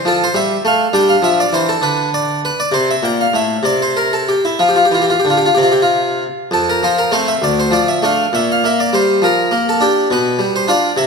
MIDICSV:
0, 0, Header, 1, 2, 480
1, 0, Start_track
1, 0, Key_signature, -1, "major"
1, 0, Tempo, 587084
1, 766, Time_signature, 6, 3, 24, 8
1, 1249, Tempo, 604230
1, 3169, Tempo, 642398
1, 5089, Tempo, 601805
1, 7009, Tempo, 587659
1, 8762, End_track
2, 0, Start_track
2, 0, Title_t, "Harpsichord"
2, 0, Program_c, 0, 6
2, 43, Note_on_c, 0, 53, 59
2, 63, Note_on_c, 0, 69, 91
2, 177, Note_off_c, 0, 69, 0
2, 194, Note_on_c, 0, 72, 91
2, 219, Note_off_c, 0, 53, 0
2, 280, Note_on_c, 0, 55, 57
2, 295, Note_on_c, 0, 76, 77
2, 302, Note_off_c, 0, 72, 0
2, 455, Note_off_c, 0, 55, 0
2, 495, Note_off_c, 0, 76, 0
2, 530, Note_on_c, 0, 57, 54
2, 547, Note_on_c, 0, 77, 76
2, 701, Note_off_c, 0, 57, 0
2, 741, Note_off_c, 0, 77, 0
2, 763, Note_on_c, 0, 62, 33
2, 764, Note_on_c, 0, 55, 58
2, 776, Note_on_c, 0, 79, 86
2, 891, Note_off_c, 0, 79, 0
2, 893, Note_on_c, 0, 77, 74
2, 938, Note_off_c, 0, 55, 0
2, 999, Note_on_c, 0, 53, 53
2, 1010, Note_off_c, 0, 77, 0
2, 1014, Note_on_c, 0, 76, 85
2, 1132, Note_off_c, 0, 76, 0
2, 1146, Note_on_c, 0, 74, 78
2, 1177, Note_off_c, 0, 53, 0
2, 1249, Note_on_c, 0, 52, 57
2, 1258, Note_off_c, 0, 74, 0
2, 1258, Note_on_c, 0, 72, 84
2, 1372, Note_off_c, 0, 72, 0
2, 1377, Note_on_c, 0, 69, 73
2, 1420, Note_off_c, 0, 52, 0
2, 1453, Note_off_c, 0, 62, 0
2, 1477, Note_on_c, 0, 50, 52
2, 1488, Note_on_c, 0, 71, 70
2, 1491, Note_off_c, 0, 69, 0
2, 1690, Note_off_c, 0, 71, 0
2, 1737, Note_on_c, 0, 74, 71
2, 1935, Note_off_c, 0, 74, 0
2, 1982, Note_on_c, 0, 71, 71
2, 1997, Note_off_c, 0, 50, 0
2, 2093, Note_off_c, 0, 71, 0
2, 2099, Note_on_c, 0, 74, 74
2, 2194, Note_on_c, 0, 48, 47
2, 2210, Note_on_c, 0, 72, 75
2, 2211, Note_off_c, 0, 74, 0
2, 2326, Note_off_c, 0, 72, 0
2, 2344, Note_on_c, 0, 76, 64
2, 2369, Note_off_c, 0, 48, 0
2, 2440, Note_on_c, 0, 46, 48
2, 2453, Note_off_c, 0, 76, 0
2, 2457, Note_on_c, 0, 79, 74
2, 2569, Note_off_c, 0, 79, 0
2, 2584, Note_on_c, 0, 77, 56
2, 2614, Note_off_c, 0, 46, 0
2, 2685, Note_on_c, 0, 45, 47
2, 2693, Note_off_c, 0, 77, 0
2, 2700, Note_on_c, 0, 76, 67
2, 2858, Note_off_c, 0, 45, 0
2, 2897, Note_off_c, 0, 76, 0
2, 2918, Note_on_c, 0, 48, 46
2, 2936, Note_on_c, 0, 74, 73
2, 3052, Note_off_c, 0, 74, 0
2, 3072, Note_on_c, 0, 72, 61
2, 3182, Note_off_c, 0, 72, 0
2, 3186, Note_on_c, 0, 70, 61
2, 3295, Note_off_c, 0, 70, 0
2, 3309, Note_on_c, 0, 69, 60
2, 3416, Note_off_c, 0, 69, 0
2, 3424, Note_on_c, 0, 67, 55
2, 3444, Note_off_c, 0, 48, 0
2, 3534, Note_off_c, 0, 67, 0
2, 3546, Note_on_c, 0, 64, 57
2, 3653, Note_on_c, 0, 65, 46
2, 3656, Note_off_c, 0, 64, 0
2, 3656, Note_on_c, 0, 53, 44
2, 3714, Note_off_c, 0, 65, 0
2, 3723, Note_on_c, 0, 67, 46
2, 3778, Note_on_c, 0, 65, 39
2, 3782, Note_off_c, 0, 67, 0
2, 3829, Note_off_c, 0, 53, 0
2, 3842, Note_off_c, 0, 65, 0
2, 3848, Note_on_c, 0, 67, 43
2, 3892, Note_on_c, 0, 52, 38
2, 3910, Note_off_c, 0, 67, 0
2, 3915, Note_on_c, 0, 65, 46
2, 3971, Note_on_c, 0, 67, 42
2, 3976, Note_off_c, 0, 65, 0
2, 4032, Note_on_c, 0, 65, 46
2, 4036, Note_off_c, 0, 67, 0
2, 4069, Note_off_c, 0, 52, 0
2, 4100, Note_off_c, 0, 65, 0
2, 4104, Note_on_c, 0, 67, 48
2, 4144, Note_on_c, 0, 50, 40
2, 4168, Note_off_c, 0, 67, 0
2, 4183, Note_on_c, 0, 65, 45
2, 4237, Note_on_c, 0, 67, 47
2, 4240, Note_off_c, 0, 65, 0
2, 4299, Note_off_c, 0, 67, 0
2, 4300, Note_on_c, 0, 65, 45
2, 4316, Note_off_c, 0, 50, 0
2, 4363, Note_off_c, 0, 65, 0
2, 4366, Note_on_c, 0, 67, 45
2, 4385, Note_on_c, 0, 48, 41
2, 4427, Note_on_c, 0, 65, 47
2, 4428, Note_off_c, 0, 67, 0
2, 4490, Note_off_c, 0, 65, 0
2, 4494, Note_on_c, 0, 67, 44
2, 4555, Note_off_c, 0, 67, 0
2, 4572, Note_on_c, 0, 65, 58
2, 4868, Note_off_c, 0, 65, 0
2, 4894, Note_off_c, 0, 48, 0
2, 5088, Note_on_c, 0, 41, 45
2, 5105, Note_on_c, 0, 69, 70
2, 5217, Note_off_c, 0, 69, 0
2, 5233, Note_on_c, 0, 70, 59
2, 5321, Note_off_c, 0, 41, 0
2, 5340, Note_on_c, 0, 53, 40
2, 5341, Note_off_c, 0, 70, 0
2, 5350, Note_on_c, 0, 72, 66
2, 5459, Note_off_c, 0, 72, 0
2, 5465, Note_on_c, 0, 70, 59
2, 5569, Note_on_c, 0, 57, 38
2, 5571, Note_on_c, 0, 60, 39
2, 5576, Note_off_c, 0, 70, 0
2, 5581, Note_on_c, 0, 72, 67
2, 5585, Note_off_c, 0, 53, 0
2, 5694, Note_off_c, 0, 72, 0
2, 5701, Note_on_c, 0, 76, 68
2, 5742, Note_off_c, 0, 57, 0
2, 5743, Note_off_c, 0, 60, 0
2, 5810, Note_on_c, 0, 38, 45
2, 5814, Note_off_c, 0, 76, 0
2, 5826, Note_on_c, 0, 74, 76
2, 5937, Note_off_c, 0, 74, 0
2, 5952, Note_on_c, 0, 72, 68
2, 6041, Note_on_c, 0, 53, 35
2, 6044, Note_off_c, 0, 38, 0
2, 6059, Note_on_c, 0, 74, 65
2, 6061, Note_off_c, 0, 72, 0
2, 6176, Note_off_c, 0, 74, 0
2, 6180, Note_on_c, 0, 76, 60
2, 6294, Note_on_c, 0, 57, 35
2, 6297, Note_off_c, 0, 76, 0
2, 6300, Note_off_c, 0, 53, 0
2, 6301, Note_on_c, 0, 62, 36
2, 6314, Note_on_c, 0, 77, 72
2, 6467, Note_off_c, 0, 57, 0
2, 6472, Note_off_c, 0, 62, 0
2, 6538, Note_on_c, 0, 46, 49
2, 6545, Note_off_c, 0, 77, 0
2, 6551, Note_on_c, 0, 76, 83
2, 6662, Note_off_c, 0, 76, 0
2, 6686, Note_on_c, 0, 77, 64
2, 6768, Note_off_c, 0, 46, 0
2, 6785, Note_on_c, 0, 58, 40
2, 6789, Note_off_c, 0, 77, 0
2, 6798, Note_on_c, 0, 76, 68
2, 6904, Note_off_c, 0, 76, 0
2, 6913, Note_on_c, 0, 74, 63
2, 7016, Note_on_c, 0, 55, 41
2, 7021, Note_off_c, 0, 74, 0
2, 7027, Note_on_c, 0, 72, 77
2, 7028, Note_off_c, 0, 58, 0
2, 7252, Note_on_c, 0, 53, 36
2, 7260, Note_off_c, 0, 72, 0
2, 7267, Note_off_c, 0, 55, 0
2, 7269, Note_on_c, 0, 70, 69
2, 7493, Note_on_c, 0, 58, 39
2, 7494, Note_off_c, 0, 53, 0
2, 7570, Note_off_c, 0, 70, 0
2, 7637, Note_on_c, 0, 69, 67
2, 7731, Note_on_c, 0, 62, 38
2, 7741, Note_on_c, 0, 67, 67
2, 7747, Note_off_c, 0, 58, 0
2, 7747, Note_off_c, 0, 69, 0
2, 7943, Note_off_c, 0, 67, 0
2, 7974, Note_off_c, 0, 62, 0
2, 7976, Note_on_c, 0, 47, 49
2, 7992, Note_on_c, 0, 71, 69
2, 8207, Note_off_c, 0, 47, 0
2, 8208, Note_on_c, 0, 55, 40
2, 8341, Note_off_c, 0, 71, 0
2, 8345, Note_on_c, 0, 72, 64
2, 8443, Note_on_c, 0, 62, 39
2, 8447, Note_on_c, 0, 65, 43
2, 8458, Note_off_c, 0, 72, 0
2, 8459, Note_on_c, 0, 74, 78
2, 8460, Note_off_c, 0, 55, 0
2, 8618, Note_off_c, 0, 62, 0
2, 8621, Note_off_c, 0, 65, 0
2, 8659, Note_off_c, 0, 74, 0
2, 8679, Note_on_c, 0, 48, 48
2, 8687, Note_on_c, 0, 76, 84
2, 8762, Note_off_c, 0, 48, 0
2, 8762, Note_off_c, 0, 76, 0
2, 8762, End_track
0, 0, End_of_file